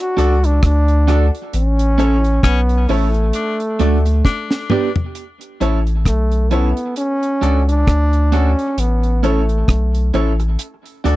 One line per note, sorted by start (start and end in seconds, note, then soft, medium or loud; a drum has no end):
0.00 0.47 F#4 loud
0.17 0.61 C#2 medium
0.17 0.35 D4 medium
0.17 0.36 F#4 loud
0.17 0.35 F#4 medium
0.17 0.36 A4 medium
0.17 0.35 A4 medium
0.17 0.37 D5 loud
0.17 closed hi-hat medium
0.43 0.64 D4 loud
0.43 muted clean electric guitar stroke soft
0.43 closed hi-hat medium
0.63 1.30 D2 loud
0.63 1.26 D4 loud
0.63 kick medium
0.63 cross-stick loud
0.63 closed hi-hat medium
0.88 closed hi-hat soft
1.08 1.25 D4 loud
1.08 1.27 F#4 medium
1.08 1.26 F#4 loud
1.08 1.27 A4 medium
1.08 1.26 A4 loud
1.08 1.27 D5 loud
1.08 cross-stick medium
1.08 closed hi-hat medium
1.35 closed hi-hat medium
1.53 2.40 A1 loud
1.53 2.47 C#4 loud
1.53 closed hi-hat loud
1.79 closed hi-hat medium
1.98 2.16 C#4 loud
1.98 2.17 E4 medium
1.98 2.16 E4 loud
1.98 2.17 A4 medium
1.98 2.16 A4 loud
1.98 2.18 C#5 loud
1.98 closed hi-hat medium
2.24 closed hi-hat medium
2.43 2.87 B1 loud
2.43 2.92 B3 loud
2.43 2.60 C#4 loud
2.43 kick loud
2.43 cross-stick loud
2.43 closed hi-hat medium
2.69 closed hi-hat medium
2.89 3.32 A1 medium
2.89 4.71 A3 medium
2.89 3.07 C#4 medium
2.89 3.08 E4 medium
2.89 3.07 E4 loud
2.89 3.08 A4 medium
2.89 3.07 A4 loud
2.89 3.08 C#5 loud
2.89 open hi-hat medium
3.14 closed hi-hat medium
3.33 3.56 D4 medium
3.33 closed hi-hat loud
3.60 closed hi-hat medium
3.79 4.23 D2 medium
3.79 3.97 A3 medium
3.79 3.97 D4 medium
3.79 3.98 F#4 loud
3.79 3.99 A4 medium
3.79 3.99 D5 loud
3.79 closed hi-hat medium
4.05 muted clean electric guitar stroke medium
4.05 closed hi-hat medium
4.25 4.92 D4 loud
4.25 kick loud
4.25 snare medium
4.51 snare medium
4.70 4.88 B3 medium
4.70 4.88 D4 loud
4.70 4.89 G4 medium
4.70 4.88 G4 loud
4.70 4.89 B4 medium
4.70 4.90 D5 loud
4.70 mid tom medium
4.96 floor tom loud
5.15 closed hi-hat medium
5.41 closed hi-hat medium
5.60 6.07 A1 loud
5.60 5.78 C#4 medium
5.60 5.79 E4 loud
5.60 5.79 E4 medium
5.60 5.80 A4 medium
5.60 5.79 A4 medium
5.60 5.80 C#5 loud
5.60 closed hi-hat medium
5.87 closed hi-hat soft
6.05 6.73 B1 medium
6.05 6.53 A3 medium
6.05 kick medium
6.05 cross-stick loud
6.05 closed hi-hat medium
6.32 closed hi-hat medium
6.51 6.97 B3 medium
6.51 6.69 C#4 medium
6.51 6.70 E4 medium
6.51 6.69 E4 medium
6.51 6.70 A4 medium
6.51 6.69 A4 loud
6.51 6.71 C#5 loud
6.51 closed hi-hat medium
6.77 closed hi-hat medium
6.96 7.64 C#4 loud
6.96 closed hi-hat medium
7.23 closed hi-hat medium
7.41 7.85 C#2 medium
7.41 7.59 D4 medium
7.41 7.59 F#4 medium
7.41 7.61 F#4 medium
7.41 7.60 A4 medium
7.41 7.61 A4 medium
7.41 7.61 D5 loud
7.41 closed hi-hat medium
7.69 8.36 D4 loud
7.69 closed hi-hat medium
7.87 8.55 D2 loud
7.87 kick loud
7.87 cross-stick loud
7.87 closed hi-hat medium
8.13 closed hi-hat medium
8.32 8.81 C#4 loud
8.32 8.50 D4 medium
8.32 8.51 F#4 medium
8.32 8.50 F#4 loud
8.32 8.52 A4 medium
8.32 8.51 A4 loud
8.32 8.52 D5 loud
8.32 closed hi-hat medium
8.59 closed hi-hat soft
8.77 9.64 A1 loud
8.77 9.27 B3 medium
8.77 closed hi-hat loud
9.03 closed hi-hat medium
9.23 10.15 A3 medium
9.23 9.41 C#4 medium
9.23 9.42 E4 loud
9.23 9.41 E4 medium
9.23 9.42 A4 medium
9.23 9.41 A4 medium
9.23 9.43 C#5 loud
9.23 closed hi-hat medium
9.49 closed hi-hat soft
9.68 10.11 B1 medium
9.68 kick loud
9.68 cross-stick loud
9.68 closed hi-hat medium
9.95 closed hi-hat medium
10.14 10.57 A1 medium
10.14 10.31 C#4 medium
10.14 10.32 E4 medium
10.14 10.32 E4 loud
10.14 10.33 A4 medium
10.14 10.32 A4 loud
10.14 10.33 C#5 loud
10.14 closed hi-hat medium
10.40 muted clean electric guitar stroke medium
10.40 closed hi-hat medium
10.59 closed hi-hat loud
10.86 closed hi-hat medium
11.04 11.16 D2 medium
11.04 11.16 D4 medium
11.04 11.16 F#4 loud
11.04 11.16 F#4 medium
11.04 11.16 A4 medium
11.04 11.16 D5 loud
11.04 closed hi-hat medium